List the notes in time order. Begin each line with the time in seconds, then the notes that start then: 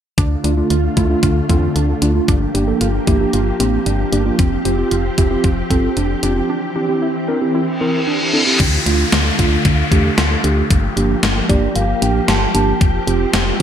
0.18 D2 D3 A3 D4 F4, kick, closed hi-hat
0.44 D2 A3 D4 F4, closed hi-hat
0.57 A3 D4 F4
0.70 D2 F4, closed hi-hat
0.97 D2 A3 D4 E4 F4, kick, closed hi-hat
1.10 A3 D4 F4
1.23 D2 F4, kick, closed hi-hat
1.49 E2 A3 C4 D4 F4, kick, closed hi-hat
1.76 D2 D4, closed hi-hat
2.02 D2 A3 D4 F4, closed hi-hat
2.15 A3 D4 F4
2.28 G1 F3 A#3 D4 G4, kick, closed hi-hat
2.55 G1 A#3 D4 G4, closed hi-hat
2.68 A#3 D4 A4
2.81 G1 F4, closed hi-hat
3.07 G1 A#3 D4 E4 G4, kick, closed hi-hat
3.20 A#3 D4 G4
3.33 G1 F4, closed hi-hat
3.60 A1 A#3 C4 D4 G4, closed hi-hat
3.86 G1 D4, closed hi-hat
4.12 G1 A#3 D4 G4, closed hi-hat
4.26 A#3 D4 F4
4.39 F1 C4, kick, closed hi-hat
4.65 F1 C4 F4 G4, closed hi-hat
4.78 C4 F4 G4
4.91 F1 F4, closed hi-hat
5.18 F1 C4 E4 F4 G4, kick, closed hi-hat
5.31 C4 F4 G4
5.44 F1 F4, kick, closed hi-hat
5.70 G1 C4 F4 A4, kick, closed hi-hat
5.97 F1 D4, closed hi-hat
6.23 F1 C4 D4 F4 G4, closed hi-hat
6.36 C4 F4 G4
6.49 E3 C4 D4
6.76 C4 D4 E4 G4
6.89 C4 E4 G4
7.02 E4
7.28 C4 D4 E4 A#4
7.41 C4 E4 G4
7.55 E4, reverse cymbal
7.81 C4 E4 A#4
8.07 D4
8.34 C4 D4 E4 A4
8.47 C4 E4 G4
8.60 D2 D3 A3 F4, kick, closed hi-hat, crash, downlifter
8.86 D2 A3 D4 F4, closed hi-hat
9.12 D2, snare, closed hi-hat
9.39 D2 A3 D4 F4, kick, closed hi-hat
9.65 D2, kick, closed hi-hat
9.92 E2 A3 D4 G4, kick, closed hi-hat
10.18 D2, snare, closed hi-hat
10.44 D2 A3 D4 G4, closed hi-hat
10.70 G1 F3 A#3 G4, kick, closed hi-hat
10.97 G1 A#3 D4 G4, closed hi-hat
11.23 G1, snare, closed hi-hat
11.49 G1 A#3 D4 G4 D5, kick, closed hi-hat
11.76 G1 F5, closed hi-hat
12.02 A1 A#3 D4 G4 G5, closed hi-hat
12.28 G1 A5, snare, closed hi-hat
12.55 G1 A#3 D4 G4 A5, closed hi-hat
12.81 F1 C4, kick, closed hi-hat
13.07 F1 C4 F4 G4, closed hi-hat
13.34 F1, snare, closed hi-hat